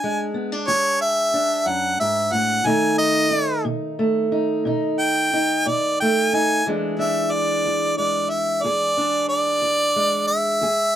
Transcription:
Already playing: steel-string acoustic guitar E2 D4 G#4, harmonica G#5
0.04 steel-string acoustic guitar G#3
0.34 steel-string acoustic guitar B3
0.52 steel-string acoustic guitar D4
0.68 steel-string acoustic guitar E2 G#4, harmonica C#5
1.01 harmonica E5
1.34 steel-string acoustic guitar D4
1.66 steel-string acoustic guitar F#2, harmonica F#5
2.00 steel-string acoustic guitar G#2, harmonica E5
2.32 steel-string acoustic guitar A2, harmonica F#5
2.65 steel-string acoustic guitar B2 D#3 A3 D#4, harmonica G#5
2.98 harmonica D#5
3.31 steel-string acoustic guitar D#4
3.65 steel-string acoustic guitar B2
3.99 steel-string acoustic guitar A3
4.32 steel-string acoustic guitar D#4
4.65 steel-string acoustic guitar B2 D#4
5.00 harmonica G5
5.33 steel-string acoustic guitar D#4
5.66 steel-string acoustic guitar B2, harmonica D5
6.00 steel-string acoustic guitar A3, harmonica G5
6.33 steel-string acoustic guitar D#4, harmonica G#5
6.66 steel-string acoustic guitar E2 E3 G#3 D4 G#4
6.99 steel-string acoustic guitar D4, harmonica E5
7.32 harmonica D5
7.65 steel-string acoustic guitar E2
7.97 steel-string acoustic guitar G#3, harmonica D5
8.30 harmonica E5
8.63 steel-string acoustic guitar E2 G#4, harmonica D5
8.97 steel-string acoustic guitar D4
9.29 harmonica D5
9.62 steel-string acoustic guitar E2
9.96 steel-string acoustic guitar G#3
10.28 harmonica E5
10.61 steel-string acoustic guitar E2 G#4

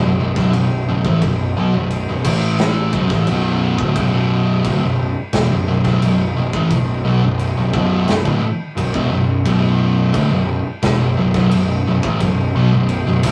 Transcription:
0.01 picked electric bass B0, distorted electric guitar B1 F#2
0.20 picked electric bass B0, distorted electric guitar B1 F#2
0.36 picked electric bass B0, distorted electric guitar B1 F#2, kick, snare
0.53 picked electric bass B0, distorted electric guitar B1 F#2, crash
0.88 picked electric bass B0, distorted electric guitar B1 F#2
1.04 picked electric bass A1, distorted electric guitar A2 E3, kick
1.22 picked electric bass B0, distorted electric guitar B1 F#2, kick, crash
1.56 picked electric bass B1, distorted electric guitar B2 F#3
1.73 picked electric bass B0, distorted electric guitar B1 F#2
1.91 crash
2.08 picked electric bass B0, distorted electric guitar B1 F#2
2.24 picked electric bass A1, distorted electric guitar A2 E3 A3, kick, crash
2.59 snare, crash
2.93 picked electric bass B0, distorted electric guitar B1 F#2, kick
3.10 picked electric bass A1, distorted electric guitar A2 E3, kick, snare
3.27 picked electric bass B0, distorted electric guitar B1 F#2 B2, crash
3.79 picked electric bass D1, distorted electric guitar D2 A2, kick
3.96 picked electric bass B0, distorted electric guitar B1 F#2 B2, kick, crash
4.65 picked electric bass D1, distorted electric guitar D2 A2, kick, crash
4.81 picked electric bass B0, distorted electric guitar B1 F#2
5.33 picked electric bass E1, distorted electric guitar E2 B2, kick, snare, crash
5.49 picked electric bass B0, distorted electric guitar B1 F#2
5.67 picked electric bass B0, distorted electric guitar B1 F#2
5.85 picked electric bass B0, distorted electric guitar B1 F#2, kick, snare
6.01 picked electric bass B0, distorted electric guitar B1 F#2, crash
6.36 picked electric bass B0, distorted electric guitar B1 F#2
6.53 picked electric bass A1, distorted electric guitar A2 E3, kick
6.71 picked electric bass B0, distorted electric guitar B1 F#2, kick, crash
7.04 picked electric bass B1, distorted electric guitar B2 F#3
7.21 picked electric bass B0, distorted electric guitar B1 F#2
7.39 crash
7.57 picked electric bass B0, distorted electric guitar B1 F#2
7.74 picked electric bass B0, distorted electric guitar B1 F#2 B2, kick
8.08 picked electric bass B0, distorted electric guitar B1 F#2, snare, crash
8.25 picked electric bass D1, distorted electric guitar D2 A2, kick
8.42 muted distorted electric guitar stroke, muted picked electric bass stroke
8.76 picked electric bass B0, distorted electric guitar B1 F#2, crash
8.93 picked electric bass E1, distorted electric guitar E2 B2, kick
9.10 picked electric bass B0, distorted electric guitar B1 F#2
9.45 picked electric bass B0, distorted electric guitar B1 F#2 B2, kick, crash
10.14 picked electric bass D1, distorted electric guitar D2 A2, kick, crash
10.30 picked electric bass B0, distorted electric guitar B1 F#2
10.82 picked electric bass E1, distorted electric guitar E2 B2, kick, snare, crash
11.00 picked electric bass B0, distorted electric guitar B1 F#2
11.17 picked electric bass B0, distorted electric guitar B1 F#2
11.34 picked electric bass B0, distorted electric guitar B1 F#2, kick, snare
11.51 picked electric bass B0, distorted electric guitar B1 F#2, crash
11.87 picked electric bass B0, distorted electric guitar B1 F#2
12.03 picked electric bass A1, distorted electric guitar A2 E3, kick
12.20 picked electric bass B0, distorted electric guitar B1 F#2, kick, crash
12.55 picked electric bass B1, distorted electric guitar B2 F#3
12.71 picked electric bass B0, distorted electric guitar B1 F#2
12.89 crash
13.06 picked electric bass B0, distorted electric guitar B1 F#2
13.23 picked electric bass A1, distorted electric guitar A2 E3 A3, kick, crash

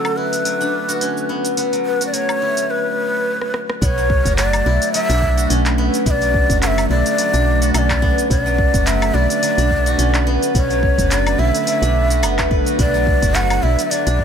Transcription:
Already playing: synth drone D3 A3 B4, guzheng F#3 B3 C#4 E4 F#4, ney A4
0.05 low woodblock, shaker
0.16 guzheng E4, ney B4
0.33 open hi-hat, shaker
0.45 guzheng F#3, open hi-hat, shaker
0.61 guzheng D4, shaker
0.88 guzheng F#4, open hi-hat, shaker
1.01 guzheng C#4, open hi-hat, shaker
1.17 shaker
1.29 guzheng B3
1.45 open hi-hat, shaker
1.57 guzheng B3, open hi-hat, shaker
1.73 guzheng F#3, open hi-hat, shaker
1.86 ney B4
2.01 guzheng F#4, open hi-hat, shaker
2.07 ney D5
2.13 guzheng F#3, ney C#5, open hi-hat, shaker
2.29 low woodblock, shaker
2.42 guzheng E4
2.57 open hi-hat, shaker
2.70 ney B4
3.41 cross-stick
3.54 cross-stick
3.70 cross-stick
3.82 fm bass B1, synth drone D3 A3 B4, guzheng B3, ney C#5 D5, kick, open hi-hat, shaker
3.98 guzheng F#3, shaker
4.10 kick
4.25 fm bass F#1, guzheng F#4, kick, open hi-hat, shaker
4.37 guzheng F#3, ney D5, clap, open hi-hat, shaker
4.53 open hi-hat, low woodblock, shaker
4.66 fm bass B1, guzheng E4
4.82 open hi-hat, shaker
4.93 guzheng F#3, ney E5, open hi-hat, shaker
5.09 fm bass B1, guzheng D4, open hi-hat, shaker
5.22 kick
5.37 guzheng F#4, open hi-hat, shaker
5.50 fm bass B1, guzheng C#4, open hi-hat, shaker
5.66 clap, open hi-hat, shaker
5.78 guzheng B3
5.94 open hi-hat, shaker
6.06 fm bass B1, guzheng B3, ney E5, kick, open hi-hat, shaker
6.11 ney D5
6.21 guzheng F#3, open hi-hat, shaker
6.34 kick
6.50 fm bass F#1, guzheng F#4, kick, open hi-hat, shaker
6.62 guzheng F#3, ney F#5, clap, open hi-hat, shaker
6.67 ney E5
6.78 open hi-hat, low woodblock, shaker
6.90 fm bass B1, guzheng E4, ney D5
7.06 open hi-hat, shaker
7.18 guzheng F#3, open hi-hat, shaker
7.33 fm bass B1, guzheng D4, open hi-hat, shaker
7.62 guzheng F#4, open hi-hat, shaker
7.74 fm bass B1, guzheng C#4, ney E5, open hi-hat, low woodblock, shaker
7.78 ney D5
7.90 kick, clap, open hi-hat, low woodblock, shaker
8.02 guzheng B3, kick
8.18 open hi-hat, shaker
8.30 fm bass B1, guzheng B3, ney D5, kick, open hi-hat, shaker
8.46 guzheng F#3, shaker
8.58 kick
8.74 fm bass F#1, guzheng F#4, kick, open hi-hat, shaker
8.86 guzheng F#3, ney E5, clap, open hi-hat, shaker
9.02 open hi-hat, low woodblock, shaker
9.14 fm bass B1, guzheng E4, ney D5
9.30 open hi-hat, shaker
9.43 guzheng F#3, open hi-hat, shaker
9.58 fm bass B1, guzheng D4, open hi-hat, shaker
9.71 kick
9.86 guzheng F#4, open hi-hat, shaker
9.98 fm bass B1, guzheng C#4, open hi-hat, shaker
10.14 clap, open hi-hat, shaker
10.27 guzheng B3
10.42 open hi-hat, shaker
10.55 fm bass B1, guzheng B3, ney C#5, kick, open hi-hat, shaker
10.70 guzheng F#3, open hi-hat, shaker
10.83 kick
10.98 fm bass F#1, guzheng F#4, kick, open hi-hat, shaker
11.11 guzheng F#3, ney D5, clap, open hi-hat, shaker
11.27 open hi-hat, low woodblock, shaker
11.39 fm bass B1, guzheng E4, ney E5
11.55 open hi-hat, shaker
11.67 guzheng F#3, open hi-hat, shaker
11.82 fm bass B1, guzheng D4, open hi-hat, shaker
12.10 guzheng F#4, open hi-hat, shaker
12.23 fm bass F#1, guzheng B3, open hi-hat, low woodblock, shaker
12.38 guzheng A4, kick, clap, open hi-hat, low woodblock, shaker
12.51 guzheng B4, kick
12.66 guzheng F#4, open hi-hat, shaker
12.79 fm bass B1, guzheng B3, ney D5, kick, open hi-hat, shaker
12.94 guzheng F#3, shaker
13.07 kick
13.22 fm bass F#1, guzheng F#4, kick, open hi-hat, shaker
13.35 guzheng F#3, ney F#5, clap, open hi-hat, shaker
13.50 open hi-hat, low woodblock, shaker
13.63 fm bass B1, guzheng E4, ney E5
13.79 open hi-hat, shaker
13.91 guzheng F#3, ney D5, open hi-hat, shaker
14.07 fm bass B1, guzheng D4, open hi-hat, shaker
14.19 kick

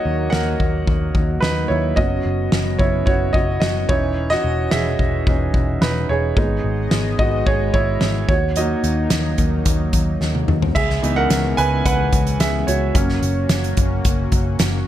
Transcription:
Already playing: grand piano F#3 A#3 D#4 F#4 C#5 D#5, analog synth pad F#3 A#3
0.06 picked electric bass D#2
0.30 picked electric bass D#2, grand piano A#4 F#5, snare
0.60 picked electric bass D#2, kick
0.87 picked electric bass D#2, kick
1.15 picked electric bass D#2, kick
1.40 picked electric bass D#2, grand piano D#4 B4, snare
1.68 picked electric bass D#2, grand piano E4 C#5
1.96 picked electric bass F#1, grand piano F#3 B3 C#4 F#4 D#5, analog synth pad B3 C#4, kick
2.25 picked electric bass F#1
2.52 picked electric bass F#1, snare
2.79 picked electric bass F#1, grand piano E4 C#5, kick
3.06 picked electric bass F#1, grand piano F#4 C#5, kick
3.33 picked electric bass F#1, grand piano F#4 D#5, kick
3.60 picked electric bass F#1, grand piano F#4 D#5, snare
3.89 picked electric bass E1, grand piano E3 C#4 D#4 E4 C#5, analog synth pad E3, kick
4.30 grand piano F#4 D#5, snare
4.44 picked electric bass E1
4.71 picked electric bass E1, grand piano G#4 E5, snare
4.99 picked electric bass E1, kick
5.27 picked electric bass E1, grand piano E3 C#4 D#4, kick
5.54 picked electric bass E1, kick
5.81 picked electric bass E1, grand piano D#4 B4, snare
6.09 picked electric bass E1, grand piano G#4 C#5
6.36 picked electric bass G#1, analog synth pad G#3 B3 D#5, grand piano G#3 B3 D#4, kick
6.64 picked electric bass G#1
6.91 picked electric bass G#1, snare
7.19 picked electric bass G#1, grand piano F#4 D#5, kick
7.46 picked electric bass G#1, grand piano G#4 C#5, kick
7.74 picked electric bass G#1, grand piano E4 C#5, kick
8.01 picked electric bass G#1, snare
8.28 picked electric bass D#2, analog synth pad F#3 A#3 D#4, grand piano F#4 C#5, kick
8.56 grand piano F#3 A#3 D#4 F#4 D#5, closed hi-hat
8.84 picked electric bass D#2, closed hi-hat
9.10 picked electric bass D#2, snare, closed hi-hat
9.38 picked electric bass D#2, kick, closed hi-hat
9.66 picked electric bass D#2, kick, closed hi-hat
9.93 picked electric bass D#2, kick, closed hi-hat
10.21 picked electric bass D#2, snare
10.35 high tom
10.48 picked electric bass D#2, mid tom
10.62 floor tom
10.75 picked electric bass C#2, analog synth pad C#3 E3 G#3 B3 C#4, grand piano G#4 E5, kick, crash
10.90 snare
11.02 picked electric bass C#2, grand piano E3 B3 D#4, closed hi-hat
11.16 grand piano A#4 F#5
11.30 picked electric bass C#2, snare, closed hi-hat
11.57 picked electric bass C#2, grand piano B4 G#5, closed hi-hat
11.86 picked electric bass C#2, grand piano B4 F#5, kick, closed hi-hat
12.13 picked electric bass C#2, kick, closed hi-hat
12.27 closed hi-hat
12.40 picked electric bass C#2, grand piano G#4 E5, snare, closed hi-hat
12.67 picked electric bass C#2, grand piano F#4 C#5, closed hi-hat
12.94 picked electric bass F#1, grand piano F#3 A#3 C#4, analog synth pad A#3 C#4 F#4, kick, closed hi-hat
13.09 snare
13.23 picked electric bass F#1, closed hi-hat
13.49 picked electric bass F#1, snare, closed hi-hat
13.64 closed hi-hat
13.77 picked electric bass F#1, kick, closed hi-hat
14.05 picked electric bass F#1, kick, closed hi-hat
14.32 picked electric bass F#1, kick, closed hi-hat
14.59 picked electric bass F#1, snare, closed hi-hat

